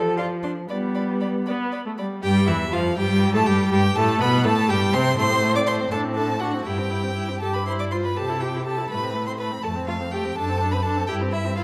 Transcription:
Already playing: F3 A4
0.18 F4 D5 C6
0.43 D4 D5 C6
0.69 G3 B3 D5 B5
0.95 D5 B5
1.21 D5 B5
1.46 B3 D5 B5
1.72 D5 B5
1.86 A3
1.98 G3 D5 B5
2.23 G2 G3 G4 G5
2.47 E2 E3 E4 E5
2.72 F2 F3 F4 F5
2.97 G2 G3 G4 G5
3.34 A2 A3 A4 A5
3.46 G2 G3 G4 G5
3.71 G2 G3 G4 G5
3.96 A2 A3 A4 A5
4.20 B2 B3 B4 B5
4.44 A2 A3 A4 A5
4.68 G2 G3 G4 G5
4.93 C3 C4 C5 C6
5.18 A2 A3 C5 C6
5.30 C4
5.43 A3
5.55 C4 D5 D6
5.67 A3 C5 C6
5.80 C4
5.91 A2 D4 A4 A5
6.04 C4
6.15 D4 A4 A5
6.28 C4
6.40 D4 F#4 F#5
6.53 C4
6.65 G2 E4 G4 G5
6.77 C4
6.90 E4
7.02 C4
7.15 E4
7.28 C4
7.40 G2 G4 A4 A5
7.54 B4 B5
7.66 E4 C5 C6
7.79 D5 D6
7.91 F4 C5 C6
8.04 B4 B5
8.16 C3 G4 A4 A5
8.29 E4
8.40 G4 G5
8.54 E4
8.65 G4 A4 A5
8.78 E4
8.90 A2 A3 B4 B5
9.02 C4
9.14 A3
9.27 C4 C5 C6
9.39 A3 B4 B5
9.51 C4
9.63 F2 A3 A4 A5
9.75 C4
9.87 A3 F4 F5
10.00 C4
10.11 A3 G4 G5
10.24 C4
10.36 F#2 D4 A4 A5
10.48 C4
10.60 D4
10.71 C4 B4 B5
10.83 D4 A4 A5
10.96 C4
11.07 G2 E4 G4 G5
11.21 C4
11.32 E4 E5
11.45 C4
11.56 E4 F4 F5

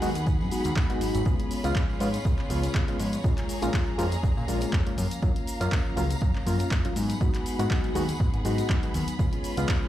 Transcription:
Already playing: G#4 F#5 B5
0.02 D#2 F#3 G#3 B3 D#4 F#4, open hi-hat, shaker
0.15 B3 D#4 F#4, closed hi-hat, tambourine, shaker
0.26 kick, tambourine, shaker
0.40 F#2 B3 D#4 F#4, tambourine
0.51 F#3 G#3 B3 D#4 F#4, open hi-hat, shaker
0.64 D#2 B3 D#4 F#4, closed hi-hat, tambourine, shaker
0.76 F#3 B3 D#4 F#4, kick, clap, tambourine, shaker
0.89 G#3 B3 D#4 F#4, closed hi-hat, tambourine
1.01 G#1 F#3 B3 D#4 F#4, open hi-hat, shaker
1.15 G#1, closed hi-hat, tambourine, shaker
1.25 F3 G#3 B3 C#4 F4 G#4 C#5, kick, tambourine, shaker
1.39 B3 C#4 G#4, closed hi-hat, tambourine
1.51 open hi-hat, shaker
1.63 C#2 G#3 B3 C#4 F4 G#4, closed hi-hat, tambourine, shaker
1.75 F3 B3 C#4 G#4, kick, clap, shaker
1.90 tambourine
2.00 G#2 F3 G#3 B3 C#4 F4 G#4, open hi-hat, shaker
2.13 B3 C#4 G#4, closed hi-hat, tambourine, shaker
2.25 C#2, kick, tambourine, shaker
2.38 C#2 B3 C#4 G#4, clap, tambourine
2.49 C#2 F3 G#3 B3 C#4 F4 G#4, open hi-hat, shaker
2.63 B3 C#4 G#4, closed hi-hat, tambourine, shaker
2.74 C#2 F3 B3 C#4 G#4, kick, clap, shaker
2.87 G#3 B3 C#4 F4 G#4, closed hi-hat, tambourine
2.99 G#2 F3 B3 C#4 G#4, open hi-hat, shaker
3.13 closed hi-hat, tambourine, shaker
3.24 A#1 F3 G#3 A#3 C#4 F4 G#4 A#5, kick, tambourine, shaker
3.37 A#3 C#4 G#4, clap, closed hi-hat, tambourine
3.49 open hi-hat, shaker
3.62 A#1 G#3 A#3 C#4 F4 G#4, closed hi-hat, tambourine, shaker
3.73 F3 C#4 G#4, kick, clap, tambourine, shaker
3.87 tambourine
3.98 F2 F3 G#3 A#3 C#4 F4 G#4, open hi-hat, shaker
4.11 A#3 C#4 G#4, closed hi-hat, tambourine, shaker
4.23 A#1, kick, tambourine, shaker
4.36 A#2 A#3 C#4 G#4, tambourine
4.48 A#1 F3 G#3 A#3 C#4 F4 G#4, open hi-hat, shaker
4.61 A#3 C#4 G#4, closed hi-hat, tambourine, shaker
4.73 F2 F3 A#3 G#4, kick, clap, shaker
4.86 G#3 A#3 C#4 F4 G#4, closed hi-hat, tambourine
4.97 F#2 F3 A#3 C#4 F5 A#5, open hi-hat, shaker
5.11 closed hi-hat, tambourine, shaker
5.22 F#2 F3 A#3 C#4 F4, kick, shaker
5.35 A#3 C#4, closed hi-hat, tambourine
5.47 open hi-hat, shaker
5.60 F#2 A#3 C#4 F4, closed hi-hat, tambourine, shaker
5.72 F3 A#3 C#4, kick, clap, tambourine, shaker
5.85 tambourine
5.96 C#2 F3 F#3 A#3 C#4 F4, open hi-hat, shaker
6.10 A#3 C#4, closed hi-hat, tambourine, shaker
6.21 F#2, kick, tambourine, shaker
6.35 F#2 A#3 C#4, clap, tambourine
6.46 F#2 F3 A#3 C#4 F4, open hi-hat, shaker
6.59 A#3 C#4, closed hi-hat, tambourine, shaker
6.71 F#2 F3 A#3, kick, clap, tambourine, shaker
6.84 F#3 A#3 C#4 F4, closed hi-hat, tambourine
6.95 G#2 F#3 B3 D#4 G#4 F#5 B5, open hi-hat, shaker
7.09 closed hi-hat, tambourine, shaker
7.20 G#2 F#3 G#3 B3 D#4 F#4, kick, shaker
7.34 B3 D#4, clap, closed hi-hat, tambourine
7.46 open hi-hat, shaker
7.58 G#2 G#3 B3 D#4 F#4, closed hi-hat, tambourine, shaker
7.70 F#3 B3 D#4, kick, clap, tambourine, shaker
7.84 closed hi-hat, tambourine
7.94 D#2 F#3 G#3 B3 D#4 F#4, open hi-hat, shaker
8.08 B3 D#4, closed hi-hat, tambourine, shaker
8.20 G#2, kick, shaker
8.33 G#1 B3 D#4, closed hi-hat, tambourine
8.44 G#2 F#3 G#3 B3 D#4 F#4, open hi-hat, shaker
8.58 B3 D#4, closed hi-hat, tambourine, shaker
8.69 F#3 B3 D#4, kick, clap, shaker
8.83 G#3 B3 D#4 F#4, closed hi-hat, tambourine
8.94 D#2 F#3 B3 D#4, open hi-hat, shaker
9.08 closed hi-hat, tambourine, shaker
9.19 C#2 F3 G#3 B3 C#4 F4 G#4 C#5, kick, tambourine, shaker
9.32 B3 C#4 G#4, closed hi-hat, tambourine
9.44 open hi-hat, shaker
9.57 C#2 G#3 B3 C#4 F4 G#4, closed hi-hat, tambourine, shaker
9.68 F3 C#4 G#4, kick, clap, shaker
9.82 tambourine

